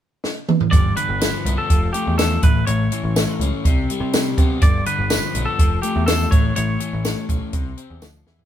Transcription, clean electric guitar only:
0.71 D5
0.97 B4
1.58 A4
1.93 G4
2.18 A4
2.44 B4
2.67 C#5
4.63 D5
4.87 B4
5.46 A4
5.82 G4
6.06 A4
6.31 C#5
6.56 C#5

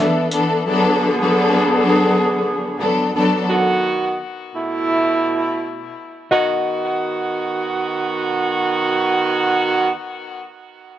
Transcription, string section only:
0.00 E3 B3 D4 A4
0.32 E3 B3 D4 A4
0.66 F#3 B3 D4 A4
1.21 F#3 B3 D4 A4
2.79 F#3 B3 D4 A4
3.15 F#3 B3 D4 A4

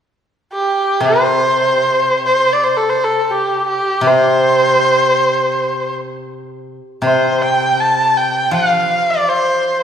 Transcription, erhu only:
0.53 G4
1.01 C5
2.26 C5
2.53 D5
2.64 C5
2.77 A4
2.89 C5
3.04 A4
3.19 A4
3.31 G4
3.67 G4
4.07 C5
7.05 C5
7.42 G5
7.80 A5
8.17 G5
8.54 F5
9.10 D5
9.29 C5

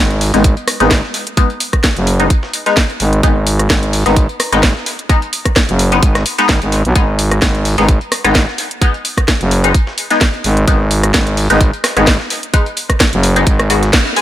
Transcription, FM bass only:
Already playing: G#1
0.34 G#1
0.80 G#1
1.97 F#1
3.00 G#1
3.23 G#1
3.70 G#1
4.06 G#1
4.52 G#1
5.69 F#1
6.03 G#1
6.49 G#1
6.62 G#1
6.85 B1
6.96 G#1
7.42 G#1
7.78 G#1
8.25 G#1
9.41 F#1
10.44 G#1
10.68 G#1
11.14 G#1
11.50 G#1
11.97 G#1
13.13 F#1
13.47 G#1

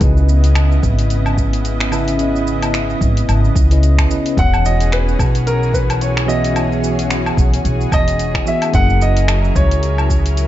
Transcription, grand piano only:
4.39 F#5
4.66 D#5
4.93 B4
5.47 A#4
5.74 B4
6.01 C#5
6.28 D#5
7.94 D#5
8.48 E5
8.75 F#5
9.02 D#5
9.56 C#5

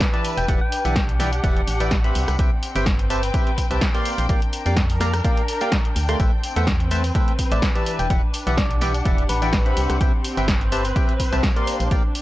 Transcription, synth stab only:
0.13 E3 G4 B4 D5 E5 A5
0.48 E3 G4 B4 D5 E5 F#5
0.85 E3 G4 B4 D5 E5 F#5
1.20 E3 G4 B4 D5 E5 G5
1.44 E3 G4 B4 D5 E5 F#5
1.80 E3 G4 B4 D5 E5 G5
2.04 C4 G4 B4 C5 E5 B5
2.39 C4 G4 B4 C5 E5 G5
2.76 C4 G4 B4 C5 E5 G5
3.10 C4 G4 B4 C5 E5 A5
3.34 C4 G4 B4 C5 E5 G5
3.71 C4 G4 B4 C5 E5 A5
3.95 A#3 G4 A#4 D5 F5 C6
4.29 A#3 G4 A#4 D5 F5 G5
4.66 A#3 G4 A#4 D5 F5 G5
5.01 A#3 G4 A#4 D5 F5 A#5
5.24 A#3 G4 A#4 D5 F5 G5
5.61 A#3 G4 A#4 D5 F5 G5
6.09 A3 G4 A#4 D5 F5 C6
6.20 A3 A4 B4 C5 E5 G5
6.56 A3 A4 B4 C5 E5 F#5
6.91 A3 A4 B4 C5 E5 A5
7.15 A3 A4 B4 C5 E5 G5
7.52 A3 A4 B4 C5 E5 A5
7.75 E3 G4 B4 D5 E5 A5
8.10 E3 G4 B4 D5 E5 F#5
8.47 E3 G4 B4 D5 E5 F#5
8.82 E3 G4 B4 D5 E5 G5
9.05 E3 G4 B4 D5 E5 F#5
9.42 E3 G4 B4 D5 E5 G5
9.66 C4 G4 B4 C5 E5 B5
10.01 C4 G4 B4 C5 E5 G5
10.37 C4 G4 B4 C5 E5 G5
10.72 C4 G4 B4 C5 E5 A5
10.96 C4 G4 B4 C5 E5 G5
11.33 C4 G4 B4 C5 E5 A5
11.56 A#3 G4 A#4 D5 F5 C6
11.91 A#3 G4 A#4 D5 F5 G5

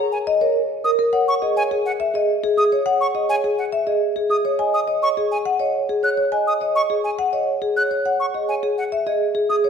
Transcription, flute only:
0.12 G#5
0.84 D#6
1.28 C#6
1.57 G#5
1.85 F#5
2.58 D#6
3.01 C#6
3.29 G#5
3.58 F#5
4.30 D#6
4.74 D#6
5.03 C#6
5.31 G#5
6.04 F#6
6.47 D#6
6.75 C#6
7.04 G#5
7.77 F#6
8.20 C#6
8.49 G#5
8.78 F#5
9.50 D#6

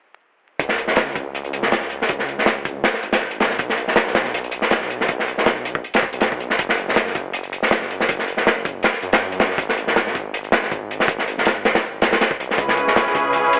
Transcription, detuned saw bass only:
0.59 C#2
0.88 C#2
1.34 C#2
2.09 C#2
2.38 C#2
3.03 G#1
3.59 B1
3.88 B1
4.34 B1
5.09 B1
5.38 B1
6.13 B1
6.59 F#1
6.88 F#1
7.34 F#1
8.09 F#1
8.38 F#1
9.02 F#2
9.58 G#1
9.87 G#1
10.34 G#1
11.08 G#1
11.38 G#1
12.02 G#2
12.40 B1
12.50 B1
12.58 C#2
12.88 C#2
13.34 C#2

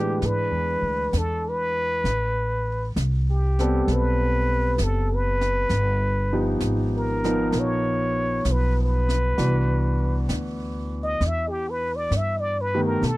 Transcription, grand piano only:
Already playing: D3 E3 G#3 A3 B3 D4 F4 B4
3.60 G3 B3 C4 A4
6.33 F3 B3 D#4 G4
7.24 F3 B3 D#4 A#4
9.38 E3 B3 D4 F#4
12.74 D#3 A3 B3 G4

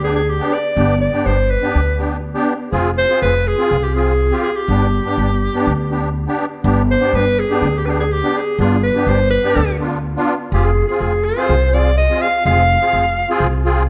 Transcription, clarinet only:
0.04 G#4
0.16 G#4
0.29 G4
0.53 D5
1.01 D5
1.26 C5
1.50 B4
2.98 C5
3.22 B4
3.47 G#4
3.83 G4
3.94 G#4
4.43 G#4
4.55 G4
6.91 C5
7.15 B4
7.39 G#4
7.77 G4
7.85 B4
7.89 G#4
8.00 G#4
8.12 G4
8.37 G#4
8.61 G#4
8.83 B4
9.08 C5
9.30 B4
10.53 G4
10.65 G#4
10.88 G#4
11.01 G#4
11.24 C5
11.74 D5
11.97 D#5
12.22 F5
12.46 F5

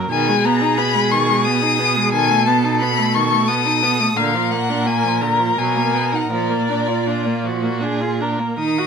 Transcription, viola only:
Already playing: F#3
0.11 D#3
0.28 G#3
0.46 B3
0.61 D#4
0.78 B3
0.94 G#3
1.11 D#3
1.28 G#3
1.46 B3
1.62 D#4
1.79 B3
1.96 G#3
2.13 D#3
2.30 A3
2.47 B3
2.64 D#4
2.82 B3
2.98 A3
3.15 D#3
3.32 A3
3.49 B3
3.66 D#4
3.83 B3
4.00 A3
4.17 D3
4.34 F3
4.51 A#3
4.69 D4
4.86 A#3
5.04 F3
5.22 D3
5.40 F3
5.58 F#3
5.76 A#3
5.94 B3
6.13 D#4
6.31 F3
6.49 A#3
6.69 D4
6.88 F4
7.07 D4
7.26 A#3
7.44 F3
7.63 A#3
7.81 D4
8.01 F4
8.20 D4
8.39 A#3
8.59 D#4
8.78 F#4

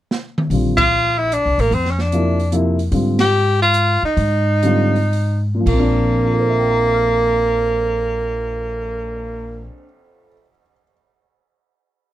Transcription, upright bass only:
0.50 A#1
1.46 C2
1.58 A1
1.71 F2
2.92 G#2
4.03 muted upright bass stroke
4.17 G#2
5.66 A#1

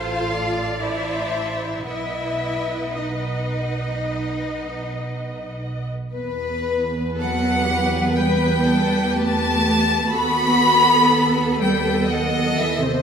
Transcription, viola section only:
Already playing: A4 C5
0.32 D5
0.83 C5
1.87 B4 D#5
6.16 B3 B4
10.13 B3 A4

